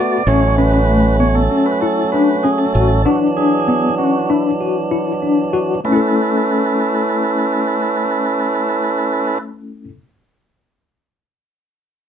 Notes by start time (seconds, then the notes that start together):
Already playing: A3 B3 F#4 D5
0.27 A1 F#3 A3 C#4 C#5
0.58 C#4 B4
0.73 B4
0.90 A3
1.20 B3 C#5
1.35 A4
1.51 C#4
1.66 B4
1.81 E4 A4
2.12 D4 B4
2.43 C#4 G#4
2.58 A4
2.74 A1 F#4 A4
3.05 E3 F#3 D4 F#4
3.37 D4 G#4
3.68 B3
3.98 C#4 F#4
4.29 D4 E4
4.60 F#4
4.91 E4
5.22 D4
5.53 F#4
5.84 A3 C#4 E4 A4 B4
5.88 C#4
5.92 E4 A4